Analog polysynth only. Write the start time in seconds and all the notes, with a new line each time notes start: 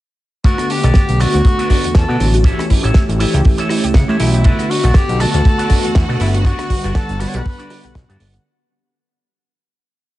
0.44 D3 A3 B3 F#5
1.19 D3 A3 B3 F#4
2.44 E3 A3 C#4 G4
3.19 E3 A3 C#4 G4
4.44 D3 A3 B3
5.19 D3 A3 B3 F#4
6.44 D3 G3 B3 F#5
7.19 D3 G3 B3 F#5